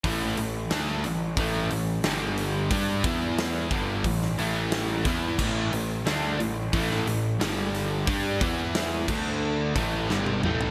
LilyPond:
<<
  \new Staff \with { instrumentName = "Distorted electric guitar" } { \clef bass \time 4/4 \key g \lydian \tempo 4 = 90 <a, e a>8 <a, e>8 <d a d'>8 <a, e>8 <a, e a>8 <a, e>8 <g, d g>4 | <g d' g'>8 <e b e'>4 <g, d g>8 <a, e>8 <a, e a>4 <e b e'>8 | <a, e a>8 <a, e>8 <d a d'>8 <a, e>8 <a, e a>8 <a, e>8 <g, d g>4 | <g d' g'>8 <e b e'>4 <d a d'>4 <a, e a>8 <g, d g>8 <a, e a>8 | }
  \new Staff \with { instrumentName = "Overdriven electric guitar" } { \clef bass \time 4/4 \key g \lydian <a, e a>8 <a, e>8 <d a d'>8 <a, e>8 <a, e a>8 <a, e>8 <g, d g>4 | <g d' g'>8 <e b e'>4 <g, d g>8 <a, e>8 <a, e a>4 <e b e'>8 | <a, e a>8 <a, e>8 <d a d'>8 <a, e>8 <a, e a>8 <a, e>8 <g, d g>4 | <g d' g'>8 <e b e'>4 <d a d'>4 <a, e a>8 <g, d g>8 <a, e a>8 | }
  \new Staff \with { instrumentName = "Picked electric bass" } { \clef bass \time 4/4 \key g \lydian a,,8 a,,8 d,8 a,,8 a,,8 a,,8 g,,4 | g,8 e,4 g,,8 a,,8 a,,4 e,8 | a,,8 a,,8 d,8 a,,8 a,,8 a,,8 g,,4 | g,8 e,4 d,4 a,,8 g,,8 a,,8 | }
  \new DrumStaff \with { instrumentName = "Drums" } \drummode { \time 4/4 <hho bd>8 hho8 <hho sn>8 hho8 <hho bd>8 hho8 <hho sn>8 hho8 | <hho bd>8 <hho bd>8 <hho sn>8 <hho bd>8 <hho bd>16 sn16 hho8 <hho sn>8 <hho bd sn>8 | <cymc bd>8 hho8 <hho sn>8 hho8 <hho bd>16 sn16 hho8 <hho sn>8 <hho sn>8 | <hho bd>8 <hho bd>8 <hho sn>8 <cymc bd>8 r8 <hho bd>8 sn16 tommh16 toml16 tomfh16 | }
>>